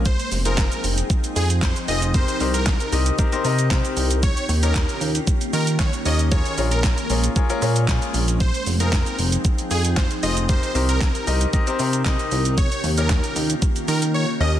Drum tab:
HH |-xox-xox-xox-xox|-xox-xox-xox-xox|-xox-xox-xox-xox|-xox-xox-xox-xox|
SH |xxxxxxxxxxxxxxxx|xxxxxxxxxxxxxxxx|xxxxxxxxxxxxxxxx|xxxxxxxxxxxxxxxx|
CP |----x-------x---|----x-------x---|----x-------x---|----x-------x---|
SD |----o-------o---|----o-------o---|----o-------o---|----o-------o---|
BD |o---o---o---o---|o---o---o---o---|o---o---o---o---|o---o---o---o---|

HH |-xox-xox-xox-xox|-xox-xox-xox-xox|-xox-xox-xox----|
SH |xxxxxxxxxxxxxxxx|xxxxxxxxxxxxxxxx|xxxxxxxxxxxx----|
CP |----x-------x---|----x-------x---|----x-----------|
SD |----o-------o---|----o-------o---|----o-----------|
BD |o---o---o---o---|o---o---o---o---|o---o---o-------|